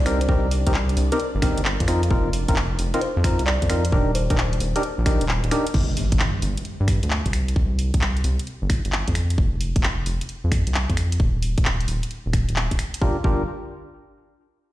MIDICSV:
0, 0, Header, 1, 7, 480
1, 0, Start_track
1, 0, Key_signature, -2, "minor"
1, 0, Tempo, 454545
1, 303, Time_signature, 4, 2, 24, 8
1, 15550, End_track
2, 0, Start_track
2, 0, Title_t, "Kalimba"
2, 0, Program_c, 0, 108
2, 61, Note_on_c, 0, 72, 90
2, 165, Note_off_c, 0, 72, 0
2, 223, Note_on_c, 0, 72, 80
2, 274, Note_off_c, 0, 72, 0
2, 1184, Note_on_c, 0, 70, 94
2, 1664, Note_off_c, 0, 70, 0
2, 3182, Note_on_c, 0, 72, 93
2, 3401, Note_off_c, 0, 72, 0
2, 3658, Note_on_c, 0, 74, 89
2, 3879, Note_off_c, 0, 74, 0
2, 4383, Note_on_c, 0, 72, 89
2, 4784, Note_off_c, 0, 72, 0
2, 15550, End_track
3, 0, Start_track
3, 0, Title_t, "String machine"
3, 0, Program_c, 1, 50
3, 0, Note_on_c, 1, 62, 89
3, 0, Note_on_c, 1, 74, 89
3, 6075, Note_off_c, 1, 74, 0
3, 6076, Note_off_c, 1, 62, 0
3, 15550, End_track
4, 0, Start_track
4, 0, Title_t, "Synth stab"
4, 0, Program_c, 2, 62
4, 64, Note_on_c, 2, 60, 88
4, 64, Note_on_c, 2, 63, 78
4, 64, Note_on_c, 2, 67, 79
4, 64, Note_on_c, 2, 70, 97
4, 211, Note_off_c, 2, 60, 0
4, 211, Note_off_c, 2, 63, 0
4, 211, Note_off_c, 2, 67, 0
4, 211, Note_off_c, 2, 70, 0
4, 303, Note_on_c, 2, 60, 83
4, 303, Note_on_c, 2, 63, 70
4, 303, Note_on_c, 2, 67, 74
4, 303, Note_on_c, 2, 70, 91
4, 501, Note_off_c, 2, 60, 0
4, 501, Note_off_c, 2, 63, 0
4, 501, Note_off_c, 2, 67, 0
4, 501, Note_off_c, 2, 70, 0
4, 705, Note_on_c, 2, 60, 88
4, 705, Note_on_c, 2, 63, 84
4, 705, Note_on_c, 2, 67, 88
4, 705, Note_on_c, 2, 70, 101
4, 777, Note_off_c, 2, 60, 0
4, 777, Note_off_c, 2, 63, 0
4, 777, Note_off_c, 2, 67, 0
4, 777, Note_off_c, 2, 70, 0
4, 1184, Note_on_c, 2, 67, 92
4, 1185, Note_on_c, 2, 60, 101
4, 1185, Note_on_c, 2, 63, 88
4, 1185, Note_on_c, 2, 70, 106
4, 1257, Note_off_c, 2, 60, 0
4, 1257, Note_off_c, 2, 63, 0
4, 1257, Note_off_c, 2, 67, 0
4, 1257, Note_off_c, 2, 70, 0
4, 1504, Note_on_c, 2, 60, 80
4, 1504, Note_on_c, 2, 63, 70
4, 1504, Note_on_c, 2, 67, 69
4, 1504, Note_on_c, 2, 70, 82
4, 1702, Note_off_c, 2, 60, 0
4, 1702, Note_off_c, 2, 63, 0
4, 1702, Note_off_c, 2, 67, 0
4, 1702, Note_off_c, 2, 70, 0
4, 1984, Note_on_c, 2, 60, 86
4, 1985, Note_on_c, 2, 63, 82
4, 1985, Note_on_c, 2, 65, 82
4, 1985, Note_on_c, 2, 70, 94
4, 2131, Note_off_c, 2, 60, 0
4, 2132, Note_off_c, 2, 63, 0
4, 2132, Note_off_c, 2, 65, 0
4, 2132, Note_off_c, 2, 70, 0
4, 2225, Note_on_c, 2, 63, 75
4, 2226, Note_on_c, 2, 60, 80
4, 2226, Note_on_c, 2, 65, 73
4, 2226, Note_on_c, 2, 70, 90
4, 2422, Note_off_c, 2, 63, 0
4, 2422, Note_off_c, 2, 70, 0
4, 2423, Note_off_c, 2, 60, 0
4, 2423, Note_off_c, 2, 65, 0
4, 2626, Note_on_c, 2, 63, 85
4, 2626, Note_on_c, 2, 65, 85
4, 2626, Note_on_c, 2, 70, 101
4, 2627, Note_on_c, 2, 60, 94
4, 2698, Note_off_c, 2, 60, 0
4, 2698, Note_off_c, 2, 63, 0
4, 2698, Note_off_c, 2, 65, 0
4, 2698, Note_off_c, 2, 70, 0
4, 3105, Note_on_c, 2, 63, 92
4, 3105, Note_on_c, 2, 65, 92
4, 3105, Note_on_c, 2, 70, 103
4, 3106, Note_on_c, 2, 60, 96
4, 3177, Note_off_c, 2, 63, 0
4, 3177, Note_off_c, 2, 70, 0
4, 3178, Note_off_c, 2, 60, 0
4, 3178, Note_off_c, 2, 65, 0
4, 3424, Note_on_c, 2, 60, 76
4, 3424, Note_on_c, 2, 63, 68
4, 3424, Note_on_c, 2, 65, 74
4, 3424, Note_on_c, 2, 70, 83
4, 3622, Note_off_c, 2, 60, 0
4, 3622, Note_off_c, 2, 63, 0
4, 3622, Note_off_c, 2, 65, 0
4, 3622, Note_off_c, 2, 70, 0
4, 3905, Note_on_c, 2, 60, 85
4, 3905, Note_on_c, 2, 63, 82
4, 3906, Note_on_c, 2, 65, 80
4, 3906, Note_on_c, 2, 70, 98
4, 4052, Note_off_c, 2, 60, 0
4, 4052, Note_off_c, 2, 63, 0
4, 4052, Note_off_c, 2, 65, 0
4, 4052, Note_off_c, 2, 70, 0
4, 4144, Note_on_c, 2, 63, 76
4, 4144, Note_on_c, 2, 67, 75
4, 4145, Note_on_c, 2, 62, 82
4, 4145, Note_on_c, 2, 70, 91
4, 4342, Note_off_c, 2, 62, 0
4, 4342, Note_off_c, 2, 63, 0
4, 4342, Note_off_c, 2, 67, 0
4, 4342, Note_off_c, 2, 70, 0
4, 4545, Note_on_c, 2, 62, 89
4, 4545, Note_on_c, 2, 63, 84
4, 4545, Note_on_c, 2, 67, 83
4, 4546, Note_on_c, 2, 70, 100
4, 4617, Note_off_c, 2, 62, 0
4, 4617, Note_off_c, 2, 63, 0
4, 4617, Note_off_c, 2, 67, 0
4, 4618, Note_off_c, 2, 70, 0
4, 5024, Note_on_c, 2, 62, 97
4, 5024, Note_on_c, 2, 67, 89
4, 5024, Note_on_c, 2, 70, 112
4, 5025, Note_on_c, 2, 63, 92
4, 5097, Note_off_c, 2, 62, 0
4, 5097, Note_off_c, 2, 63, 0
4, 5097, Note_off_c, 2, 67, 0
4, 5097, Note_off_c, 2, 70, 0
4, 5345, Note_on_c, 2, 62, 78
4, 5345, Note_on_c, 2, 63, 70
4, 5345, Note_on_c, 2, 67, 67
4, 5345, Note_on_c, 2, 70, 87
4, 5542, Note_off_c, 2, 62, 0
4, 5542, Note_off_c, 2, 63, 0
4, 5542, Note_off_c, 2, 67, 0
4, 5542, Note_off_c, 2, 70, 0
4, 5823, Note_on_c, 2, 63, 82
4, 5823, Note_on_c, 2, 67, 83
4, 5824, Note_on_c, 2, 62, 85
4, 5824, Note_on_c, 2, 70, 98
4, 5971, Note_off_c, 2, 62, 0
4, 5971, Note_off_c, 2, 63, 0
4, 5971, Note_off_c, 2, 67, 0
4, 5971, Note_off_c, 2, 70, 0
4, 13744, Note_on_c, 2, 65, 79
4, 13744, Note_on_c, 2, 67, 78
4, 13744, Note_on_c, 2, 70, 95
4, 13745, Note_on_c, 2, 62, 87
4, 13908, Note_off_c, 2, 62, 0
4, 13908, Note_off_c, 2, 65, 0
4, 13908, Note_off_c, 2, 67, 0
4, 13908, Note_off_c, 2, 70, 0
4, 13985, Note_on_c, 2, 62, 86
4, 13985, Note_on_c, 2, 65, 80
4, 13985, Note_on_c, 2, 67, 80
4, 13985, Note_on_c, 2, 70, 93
4, 14178, Note_off_c, 2, 62, 0
4, 14178, Note_off_c, 2, 65, 0
4, 14178, Note_off_c, 2, 67, 0
4, 14178, Note_off_c, 2, 70, 0
4, 15550, End_track
5, 0, Start_track
5, 0, Title_t, "Analog synth bass"
5, 0, Program_c, 3, 38
5, 0, Note_on_c, 3, 36, 93
5, 287, Note_off_c, 3, 36, 0
5, 303, Note_on_c, 3, 36, 101
5, 672, Note_off_c, 3, 36, 0
5, 704, Note_on_c, 3, 36, 84
5, 1008, Note_off_c, 3, 36, 0
5, 1025, Note_on_c, 3, 36, 89
5, 1165, Note_off_c, 3, 36, 0
5, 1425, Note_on_c, 3, 31, 107
5, 1625, Note_off_c, 3, 31, 0
5, 1667, Note_on_c, 3, 31, 86
5, 1866, Note_off_c, 3, 31, 0
5, 1904, Note_on_c, 3, 41, 90
5, 2207, Note_off_c, 3, 41, 0
5, 2223, Note_on_c, 3, 29, 94
5, 2592, Note_off_c, 3, 29, 0
5, 2625, Note_on_c, 3, 29, 85
5, 2928, Note_off_c, 3, 29, 0
5, 2944, Note_on_c, 3, 29, 83
5, 3084, Note_off_c, 3, 29, 0
5, 3345, Note_on_c, 3, 41, 103
5, 3544, Note_off_c, 3, 41, 0
5, 3584, Note_on_c, 3, 36, 87
5, 3784, Note_off_c, 3, 36, 0
5, 3825, Note_on_c, 3, 41, 93
5, 4128, Note_off_c, 3, 41, 0
5, 4143, Note_on_c, 3, 27, 102
5, 4512, Note_off_c, 3, 27, 0
5, 4545, Note_on_c, 3, 27, 83
5, 4848, Note_off_c, 3, 27, 0
5, 4863, Note_on_c, 3, 27, 89
5, 5004, Note_off_c, 3, 27, 0
5, 5263, Note_on_c, 3, 34, 101
5, 5463, Note_off_c, 3, 34, 0
5, 5504, Note_on_c, 3, 27, 102
5, 5704, Note_off_c, 3, 27, 0
5, 5743, Note_on_c, 3, 27, 113
5, 5813, Note_off_c, 3, 27, 0
5, 6064, Note_on_c, 3, 31, 98
5, 6432, Note_off_c, 3, 31, 0
5, 6464, Note_on_c, 3, 31, 84
5, 6768, Note_off_c, 3, 31, 0
5, 6783, Note_on_c, 3, 31, 83
5, 6924, Note_off_c, 3, 31, 0
5, 7186, Note_on_c, 3, 43, 101
5, 7385, Note_off_c, 3, 43, 0
5, 7425, Note_on_c, 3, 38, 84
5, 7624, Note_off_c, 3, 38, 0
5, 7665, Note_on_c, 3, 36, 94
5, 7968, Note_off_c, 3, 36, 0
5, 7984, Note_on_c, 3, 36, 97
5, 8352, Note_off_c, 3, 36, 0
5, 8385, Note_on_c, 3, 36, 79
5, 8688, Note_off_c, 3, 36, 0
5, 8704, Note_on_c, 3, 36, 86
5, 8844, Note_off_c, 3, 36, 0
5, 9105, Note_on_c, 3, 31, 97
5, 9304, Note_off_c, 3, 31, 0
5, 9346, Note_on_c, 3, 31, 87
5, 9545, Note_off_c, 3, 31, 0
5, 9586, Note_on_c, 3, 41, 90
5, 9889, Note_off_c, 3, 41, 0
5, 9906, Note_on_c, 3, 29, 99
5, 10273, Note_off_c, 3, 29, 0
5, 10307, Note_on_c, 3, 29, 80
5, 10609, Note_off_c, 3, 29, 0
5, 10625, Note_on_c, 3, 29, 86
5, 10765, Note_off_c, 3, 29, 0
5, 11028, Note_on_c, 3, 41, 100
5, 11226, Note_off_c, 3, 41, 0
5, 11266, Note_on_c, 3, 36, 84
5, 11465, Note_off_c, 3, 36, 0
5, 11507, Note_on_c, 3, 41, 90
5, 11809, Note_off_c, 3, 41, 0
5, 11825, Note_on_c, 3, 27, 99
5, 12193, Note_off_c, 3, 27, 0
5, 12225, Note_on_c, 3, 27, 82
5, 12528, Note_off_c, 3, 27, 0
5, 12544, Note_on_c, 3, 27, 89
5, 12684, Note_off_c, 3, 27, 0
5, 12947, Note_on_c, 3, 27, 103
5, 13146, Note_off_c, 3, 27, 0
5, 13187, Note_on_c, 3, 27, 99
5, 13386, Note_off_c, 3, 27, 0
5, 13426, Note_on_c, 3, 27, 97
5, 13494, Note_off_c, 3, 27, 0
5, 13745, Note_on_c, 3, 31, 95
5, 13909, Note_off_c, 3, 31, 0
5, 13984, Note_on_c, 3, 31, 99
5, 14207, Note_off_c, 3, 31, 0
5, 15550, End_track
6, 0, Start_track
6, 0, Title_t, "Impact"
6, 0, Program_c, 4, 103
6, 6062, Note_on_c, 4, 60, 77
6, 7983, Note_off_c, 4, 60, 0
6, 15550, End_track
7, 0, Start_track
7, 0, Title_t, "Drums"
7, 63, Note_on_c, 9, 26, 57
7, 63, Note_on_c, 9, 46, 95
7, 168, Note_off_c, 9, 26, 0
7, 168, Note_off_c, 9, 46, 0
7, 223, Note_on_c, 9, 42, 68
7, 303, Note_on_c, 9, 36, 114
7, 328, Note_off_c, 9, 42, 0
7, 408, Note_off_c, 9, 36, 0
7, 542, Note_on_c, 9, 46, 107
7, 648, Note_off_c, 9, 46, 0
7, 703, Note_on_c, 9, 36, 101
7, 703, Note_on_c, 9, 42, 71
7, 782, Note_on_c, 9, 39, 117
7, 809, Note_off_c, 9, 36, 0
7, 809, Note_off_c, 9, 42, 0
7, 888, Note_off_c, 9, 39, 0
7, 943, Note_on_c, 9, 42, 39
7, 1023, Note_on_c, 9, 46, 97
7, 1049, Note_off_c, 9, 42, 0
7, 1128, Note_off_c, 9, 46, 0
7, 1183, Note_on_c, 9, 42, 70
7, 1263, Note_off_c, 9, 42, 0
7, 1263, Note_on_c, 9, 42, 40
7, 1368, Note_off_c, 9, 42, 0
7, 1502, Note_on_c, 9, 26, 50
7, 1502, Note_on_c, 9, 46, 111
7, 1503, Note_on_c, 9, 36, 94
7, 1608, Note_off_c, 9, 26, 0
7, 1608, Note_off_c, 9, 36, 0
7, 1608, Note_off_c, 9, 46, 0
7, 1664, Note_on_c, 9, 42, 67
7, 1743, Note_on_c, 9, 39, 117
7, 1769, Note_off_c, 9, 42, 0
7, 1849, Note_off_c, 9, 39, 0
7, 1904, Note_on_c, 9, 36, 65
7, 1904, Note_on_c, 9, 42, 59
7, 1983, Note_on_c, 9, 26, 58
7, 1983, Note_on_c, 9, 46, 100
7, 2009, Note_off_c, 9, 36, 0
7, 2009, Note_off_c, 9, 42, 0
7, 2089, Note_off_c, 9, 26, 0
7, 2089, Note_off_c, 9, 46, 0
7, 2144, Note_on_c, 9, 42, 69
7, 2223, Note_on_c, 9, 36, 114
7, 2250, Note_off_c, 9, 42, 0
7, 2329, Note_off_c, 9, 36, 0
7, 2463, Note_on_c, 9, 46, 111
7, 2569, Note_off_c, 9, 46, 0
7, 2624, Note_on_c, 9, 36, 103
7, 2624, Note_on_c, 9, 42, 72
7, 2704, Note_on_c, 9, 39, 114
7, 2730, Note_off_c, 9, 36, 0
7, 2730, Note_off_c, 9, 42, 0
7, 2809, Note_off_c, 9, 39, 0
7, 2943, Note_on_c, 9, 46, 101
7, 3049, Note_off_c, 9, 46, 0
7, 3104, Note_on_c, 9, 42, 72
7, 3183, Note_off_c, 9, 42, 0
7, 3183, Note_on_c, 9, 42, 39
7, 3289, Note_off_c, 9, 42, 0
7, 3423, Note_on_c, 9, 26, 54
7, 3423, Note_on_c, 9, 46, 118
7, 3424, Note_on_c, 9, 36, 99
7, 3529, Note_off_c, 9, 26, 0
7, 3529, Note_off_c, 9, 36, 0
7, 3529, Note_off_c, 9, 46, 0
7, 3583, Note_on_c, 9, 42, 69
7, 3663, Note_on_c, 9, 39, 114
7, 3689, Note_off_c, 9, 42, 0
7, 3768, Note_off_c, 9, 39, 0
7, 3824, Note_on_c, 9, 36, 66
7, 3824, Note_on_c, 9, 42, 57
7, 3903, Note_on_c, 9, 26, 60
7, 3903, Note_on_c, 9, 46, 107
7, 3929, Note_off_c, 9, 36, 0
7, 3929, Note_off_c, 9, 42, 0
7, 4008, Note_off_c, 9, 26, 0
7, 4008, Note_off_c, 9, 46, 0
7, 4062, Note_on_c, 9, 42, 72
7, 4143, Note_on_c, 9, 36, 119
7, 4168, Note_off_c, 9, 42, 0
7, 4249, Note_off_c, 9, 36, 0
7, 4382, Note_on_c, 9, 46, 117
7, 4488, Note_off_c, 9, 46, 0
7, 4543, Note_on_c, 9, 42, 73
7, 4544, Note_on_c, 9, 36, 101
7, 4622, Note_on_c, 9, 39, 120
7, 4649, Note_off_c, 9, 42, 0
7, 4650, Note_off_c, 9, 36, 0
7, 4728, Note_off_c, 9, 39, 0
7, 4783, Note_on_c, 9, 42, 40
7, 4862, Note_on_c, 9, 46, 102
7, 4888, Note_off_c, 9, 42, 0
7, 4968, Note_off_c, 9, 46, 0
7, 5023, Note_on_c, 9, 42, 68
7, 5103, Note_off_c, 9, 42, 0
7, 5103, Note_on_c, 9, 42, 39
7, 5208, Note_off_c, 9, 42, 0
7, 5343, Note_on_c, 9, 26, 57
7, 5343, Note_on_c, 9, 46, 112
7, 5344, Note_on_c, 9, 36, 97
7, 5448, Note_off_c, 9, 26, 0
7, 5448, Note_off_c, 9, 46, 0
7, 5449, Note_off_c, 9, 36, 0
7, 5503, Note_on_c, 9, 42, 69
7, 5582, Note_on_c, 9, 39, 119
7, 5609, Note_off_c, 9, 42, 0
7, 5688, Note_off_c, 9, 39, 0
7, 5742, Note_on_c, 9, 42, 56
7, 5823, Note_on_c, 9, 26, 63
7, 5823, Note_on_c, 9, 46, 105
7, 5848, Note_off_c, 9, 42, 0
7, 5928, Note_off_c, 9, 26, 0
7, 5928, Note_off_c, 9, 46, 0
7, 5983, Note_on_c, 9, 42, 71
7, 6062, Note_on_c, 9, 49, 95
7, 6064, Note_on_c, 9, 36, 114
7, 6089, Note_off_c, 9, 42, 0
7, 6168, Note_off_c, 9, 49, 0
7, 6169, Note_off_c, 9, 36, 0
7, 6302, Note_on_c, 9, 46, 112
7, 6408, Note_off_c, 9, 46, 0
7, 6463, Note_on_c, 9, 42, 65
7, 6464, Note_on_c, 9, 36, 107
7, 6542, Note_on_c, 9, 39, 122
7, 6569, Note_off_c, 9, 42, 0
7, 6570, Note_off_c, 9, 36, 0
7, 6647, Note_off_c, 9, 39, 0
7, 6782, Note_on_c, 9, 46, 100
7, 6888, Note_off_c, 9, 46, 0
7, 6943, Note_on_c, 9, 42, 64
7, 7022, Note_off_c, 9, 42, 0
7, 7022, Note_on_c, 9, 42, 36
7, 7128, Note_off_c, 9, 42, 0
7, 7263, Note_on_c, 9, 26, 55
7, 7263, Note_on_c, 9, 46, 116
7, 7264, Note_on_c, 9, 36, 99
7, 7369, Note_off_c, 9, 26, 0
7, 7369, Note_off_c, 9, 36, 0
7, 7369, Note_off_c, 9, 46, 0
7, 7423, Note_on_c, 9, 42, 64
7, 7503, Note_on_c, 9, 39, 119
7, 7529, Note_off_c, 9, 42, 0
7, 7609, Note_off_c, 9, 39, 0
7, 7664, Note_on_c, 9, 42, 53
7, 7665, Note_on_c, 9, 36, 62
7, 7743, Note_on_c, 9, 26, 60
7, 7743, Note_on_c, 9, 46, 99
7, 7769, Note_off_c, 9, 42, 0
7, 7770, Note_off_c, 9, 36, 0
7, 7849, Note_off_c, 9, 26, 0
7, 7849, Note_off_c, 9, 46, 0
7, 7904, Note_on_c, 9, 42, 67
7, 7984, Note_on_c, 9, 36, 123
7, 8009, Note_off_c, 9, 42, 0
7, 8090, Note_off_c, 9, 36, 0
7, 8223, Note_on_c, 9, 46, 98
7, 8329, Note_off_c, 9, 46, 0
7, 8384, Note_on_c, 9, 42, 65
7, 8385, Note_on_c, 9, 36, 109
7, 8463, Note_on_c, 9, 39, 127
7, 8490, Note_off_c, 9, 42, 0
7, 8491, Note_off_c, 9, 36, 0
7, 8568, Note_off_c, 9, 39, 0
7, 8624, Note_on_c, 9, 42, 33
7, 8703, Note_on_c, 9, 46, 98
7, 8729, Note_off_c, 9, 42, 0
7, 8809, Note_off_c, 9, 46, 0
7, 8865, Note_on_c, 9, 42, 63
7, 8945, Note_off_c, 9, 42, 0
7, 8945, Note_on_c, 9, 42, 34
7, 9050, Note_off_c, 9, 42, 0
7, 9184, Note_on_c, 9, 26, 55
7, 9184, Note_on_c, 9, 46, 108
7, 9185, Note_on_c, 9, 36, 107
7, 9290, Note_off_c, 9, 26, 0
7, 9290, Note_off_c, 9, 46, 0
7, 9291, Note_off_c, 9, 36, 0
7, 9346, Note_on_c, 9, 42, 61
7, 9424, Note_on_c, 9, 39, 127
7, 9451, Note_off_c, 9, 42, 0
7, 9529, Note_off_c, 9, 39, 0
7, 9584, Note_on_c, 9, 42, 53
7, 9586, Note_on_c, 9, 36, 66
7, 9664, Note_on_c, 9, 26, 61
7, 9664, Note_on_c, 9, 46, 100
7, 9689, Note_off_c, 9, 42, 0
7, 9692, Note_off_c, 9, 36, 0
7, 9770, Note_off_c, 9, 26, 0
7, 9770, Note_off_c, 9, 46, 0
7, 9825, Note_on_c, 9, 42, 62
7, 9905, Note_on_c, 9, 36, 124
7, 9930, Note_off_c, 9, 42, 0
7, 10011, Note_off_c, 9, 36, 0
7, 10144, Note_on_c, 9, 46, 101
7, 10249, Note_off_c, 9, 46, 0
7, 10305, Note_on_c, 9, 42, 62
7, 10306, Note_on_c, 9, 36, 115
7, 10385, Note_on_c, 9, 39, 127
7, 10411, Note_off_c, 9, 36, 0
7, 10411, Note_off_c, 9, 42, 0
7, 10490, Note_off_c, 9, 39, 0
7, 10624, Note_on_c, 9, 46, 95
7, 10730, Note_off_c, 9, 46, 0
7, 10785, Note_on_c, 9, 42, 62
7, 10865, Note_off_c, 9, 42, 0
7, 10865, Note_on_c, 9, 42, 34
7, 10971, Note_off_c, 9, 42, 0
7, 11105, Note_on_c, 9, 36, 104
7, 11106, Note_on_c, 9, 26, 54
7, 11106, Note_on_c, 9, 46, 106
7, 11211, Note_off_c, 9, 26, 0
7, 11211, Note_off_c, 9, 36, 0
7, 11211, Note_off_c, 9, 46, 0
7, 11266, Note_on_c, 9, 42, 59
7, 11346, Note_on_c, 9, 39, 125
7, 11372, Note_off_c, 9, 42, 0
7, 11452, Note_off_c, 9, 39, 0
7, 11506, Note_on_c, 9, 36, 69
7, 11507, Note_on_c, 9, 42, 52
7, 11585, Note_on_c, 9, 26, 61
7, 11585, Note_on_c, 9, 46, 94
7, 11611, Note_off_c, 9, 36, 0
7, 11612, Note_off_c, 9, 42, 0
7, 11691, Note_off_c, 9, 26, 0
7, 11691, Note_off_c, 9, 46, 0
7, 11746, Note_on_c, 9, 42, 62
7, 11825, Note_on_c, 9, 36, 123
7, 11852, Note_off_c, 9, 42, 0
7, 11931, Note_off_c, 9, 36, 0
7, 12064, Note_on_c, 9, 46, 98
7, 12170, Note_off_c, 9, 46, 0
7, 12225, Note_on_c, 9, 42, 64
7, 12226, Note_on_c, 9, 36, 107
7, 12304, Note_on_c, 9, 39, 122
7, 12330, Note_off_c, 9, 42, 0
7, 12331, Note_off_c, 9, 36, 0
7, 12410, Note_off_c, 9, 39, 0
7, 12466, Note_on_c, 9, 42, 35
7, 12545, Note_on_c, 9, 46, 93
7, 12572, Note_off_c, 9, 42, 0
7, 12650, Note_off_c, 9, 46, 0
7, 12705, Note_on_c, 9, 42, 65
7, 12785, Note_off_c, 9, 42, 0
7, 12785, Note_on_c, 9, 42, 35
7, 12891, Note_off_c, 9, 42, 0
7, 13025, Note_on_c, 9, 26, 53
7, 13025, Note_on_c, 9, 36, 103
7, 13025, Note_on_c, 9, 46, 103
7, 13130, Note_off_c, 9, 36, 0
7, 13131, Note_off_c, 9, 26, 0
7, 13131, Note_off_c, 9, 46, 0
7, 13186, Note_on_c, 9, 42, 60
7, 13264, Note_on_c, 9, 39, 126
7, 13291, Note_off_c, 9, 42, 0
7, 13370, Note_off_c, 9, 39, 0
7, 13425, Note_on_c, 9, 36, 65
7, 13426, Note_on_c, 9, 42, 52
7, 13505, Note_on_c, 9, 26, 60
7, 13505, Note_on_c, 9, 46, 95
7, 13531, Note_off_c, 9, 36, 0
7, 13531, Note_off_c, 9, 42, 0
7, 13611, Note_off_c, 9, 26, 0
7, 13611, Note_off_c, 9, 46, 0
7, 13666, Note_on_c, 9, 42, 68
7, 13744, Note_on_c, 9, 36, 112
7, 13772, Note_off_c, 9, 42, 0
7, 13850, Note_off_c, 9, 36, 0
7, 13984, Note_on_c, 9, 36, 114
7, 14089, Note_off_c, 9, 36, 0
7, 15550, End_track
0, 0, End_of_file